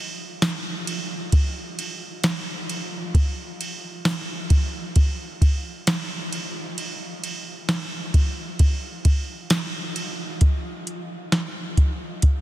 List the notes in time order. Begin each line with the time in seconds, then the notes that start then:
0.42 snare, ride, tambourine
0.87 ride
1.32 kick, ride
1.79 ride
2.24 snare, ride, tambourine
2.69 ride
3.14 kick, ride
3.61 ride
4.05 snare, ride, tambourine
4.50 kick, ride
4.96 kick, ride
5.42 kick, ride
5.87 snare, ride, tambourine
6.33 ride
6.78 ride
7.24 ride
7.69 snare, ride, tambourine
8.14 kick, ride
8.59 kick, ride
9.05 kick, ride
9.50 snare, ride, tambourine
9.96 ride
10.41 kick, closed hi-hat
10.87 closed hi-hat
11.32 snare, closed hi-hat
11.77 kick, closed hi-hat
12.22 kick, closed hi-hat